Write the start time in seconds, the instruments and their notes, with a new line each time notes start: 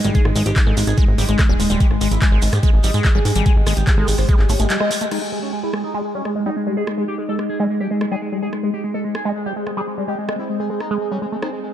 Already playing: ambient pad G#3 D#4
0.04 analog synth bass G#1, acid bass G3, analog synth lead G#3, closed hi-hat, shekere
0.15 acid bass G#3, analog synth lead G#4, kick, closed hi-hat, shekere
0.25 analog synth bass G#1, analog synth lead G#3, cross-stick
0.36 analog synth bass G#1, analog synth lead G#3, acid bass G#3, open hi-hat, shekere
0.46 analog synth bass G#1, analog synth lead G4, closed hi-hat, shekere
0.56 analog synth lead G#3, kick, clap, closed hi-hat, shekere
0.67 analog synth bass G#1, acid bass G#3, analog synth lead A4
0.77 analog synth bass G#1, analog synth lead G#3, open hi-hat, shekere
0.87 analog synth bass G#1, analog synth lead G#4, closed hi-hat, shekere
0.97 acid bass G#3, analog synth lead G#3, kick, closed hi-hat, shekere
1.08 analog synth bass G#1, analog synth lead G#3
1.18 analog synth bass G#1, acid bass G3, analog synth lead G4, open hi-hat, shekere
1.28 analog synth bass G#1, analog synth lead G#3, acid bass G#3, closed hi-hat, shekere
1.39 acid bass G#3, analog synth lead G#3, kick, cross-stick, clap, closed hi-hat, shekere
1.49 analog synth bass D#1, acid bass G3, analog synth lead G#4
1.60 analog synth bass D#1, analog synth lead G#3, open hi-hat, shekere
1.70 analog synth bass D#1, acid bass G3, analog synth lead G#3, closed hi-hat, shekere
1.80 acid bass G#3, analog synth lead G4, ambient pad G4, kick, closed hi-hat, shekere
1.91 analog synth bass G#1, analog synth lead G#3, cross-stick
2.01 analog synth bass G#1, analog synth lead G#3, acid bass G#3, open hi-hat, shekere
2.11 analog synth bass G#1, analog synth lead E4, closed hi-hat, shekere
2.22 analog synth lead G#3, kick, clap, closed hi-hat, shekere
2.32 analog synth bass G#1, acid bass G#3, analog synth lead G#4
2.42 analog synth bass G#1, analog synth lead G#3, open hi-hat, shekere
2.53 analog synth bass G#2, analog synth lead G4, cross-stick, closed hi-hat, shekere
2.63 analog synth lead G#3, acid bass G#3, kick, closed hi-hat, shekere
2.74 analog synth bass G#1, analog synth lead G#3
2.83 analog synth bass G#1, acid bass G3, analog synth lead D#4, open hi-hat, shekere
2.94 analog synth bass G#2, analog synth lead G#3, acid bass G#3, closed hi-hat, shekere
3.05 acid bass G#3, analog synth lead G#3, kick, cross-stick, clap, closed hi-hat, shekere
3.15 analog synth bass G#1, acid bass G3, analog synth lead G#4
3.25 analog synth bass G#2, analog synth lead G#3, open hi-hat, shekere
3.36 analog synth bass G#1, acid bass G3, analog synth lead G#3, closed hi-hat, shekere
3.46 analog synth lead G#4, kick, closed hi-hat, shekere
3.56 analog synth bass G#1, analog synth lead G#3
3.67 analog synth bass G#1, acid bass G#3, analog synth lead G#3, cross-stick, open hi-hat, shekere
3.77 analog synth bass G#1, analog synth lead G4, closed hi-hat, shekere
3.87 analog synth lead G#3, kick, clap, closed hi-hat, shekere
3.98 analog synth bass G#1, acid bass G#3, analog synth lead A4
4.08 analog synth bass G#1, analog synth lead G#3, open hi-hat, shekere
4.18 analog synth bass G#1, analog synth lead C5, cross-stick, open hi-hat, shekere
4.28 acid bass G#3, analog synth lead G#3, kick, closed hi-hat, shekere
4.39 analog synth bass G#1, analog synth lead G#3, clap
4.49 analog synth bass G#1, acid bass A3, analog synth lead C#5, open hi-hat, shekere
4.59 analog synth bass G#1, analog synth lead G#3, acid bass A3, closed hi-hat, shekere
4.70 acid bass G3, analog synth lead G#3, clap, closed hi-hat, shekere
4.80 acid bass G#3, analog synth lead D#5, cross-stick
4.91 analog synth lead G#3, open hi-hat, shekere
5.01 analog synth lead G#3, acid bass A3, closed hi-hat, shekere
5.11 acid bass G#3, ambient pad G#3 D#4, analog synth lead D#4, cross-stick, crash
5.22 analog synth lead G#3
5.32 analog synth lead G#3, acid bass G#3
5.42 analog synth lead C#4
5.53 analog synth lead G#3
5.63 acid bass G#3, analog synth lead E4
5.73 analog synth lead G#3, cross-stick
5.84 analog synth lead D#4
5.94 analog synth lead G#3, acid bass G#3
6.04 analog synth lead G#3
6.15 acid bass G3, analog synth lead C#4
6.25 analog synth lead G#3, acid bass G#3, cross-stick
6.36 analog synth lead G#3, acid bass G#3
6.46 acid bass G3, analog synth lead D#4
6.56 analog synth lead G#3
6.67 acid bass G3, analog synth lead G#3
6.77 acid bass G#3, analog synth lead G#4
6.87 analog synth lead G#3, cross-stick
6.98 analog synth lead G#3, acid bass G#3
7.08 analog synth lead G4
7.18 analog synth lead G#3
7.29 acid bass G#3, analog synth lead A4
7.39 analog synth lead G#3, cross-stick
7.49 analog synth lead G#4
7.60 analog synth lead G#3, acid bass G#3
7.70 analog synth lead G#3
7.80 acid bass G3, analog synth lead G4
7.91 analog synth lead G#3, acid bass G#3
8.01 analog synth lead G#3, acid bass G#3, cross-stick
8.11 acid bass G3, analog synth lead G#4
8.22 analog synth lead G#3
8.32 acid bass G3, analog synth lead G#3
8.42 acid bass G#3, ambient pad C4, analog synth lead G#4
8.53 analog synth lead G#3, cross-stick
8.63 analog synth lead G#3, acid bass G#3
8.73 analog synth lead G4
8.84 analog synth lead G#3
8.94 acid bass G#3, analog synth lead A4
9.04 analog synth lead G#3
9.15 analog synth lead G#4, cross-stick
9.25 acid bass G#3, analog synth lead G#3
9.36 analog synth lead G#3
9.46 acid bass G3, analog synth lead G4
9.56 analog synth lead G#3, acid bass G#3
9.67 analog synth lead G#3, acid bass G#3, cross-stick
9.77 acid bass G3, analog synth lead G#4
9.87 analog synth lead G#3
9.98 acid bass G3, analog synth lead G#3
10.08 acid bass G#3, analog synth lead G4
10.18 analog synth lead G#3
10.29 analog synth lead G#3, acid bass G#3, cross-stick
10.39 analog synth lead E4
10.49 analog synth lead G#3
10.60 acid bass G#3, analog synth lead G#4
10.70 analog synth lead G#3
10.80 analog synth lead D#4, cross-stick
10.91 acid bass G#3, analog synth lead G#3
11.01 analog synth lead G#3
11.11 acid bass G3, analog synth lead C#4
11.22 acid bass G#3, analog synth lead G#3
11.32 analog synth lead G#3, acid bass A3
11.42 analog synth lead C4, acid bass D#4, cross-stick
11.53 analog synth lead G#3
11.63 analog synth lead G#3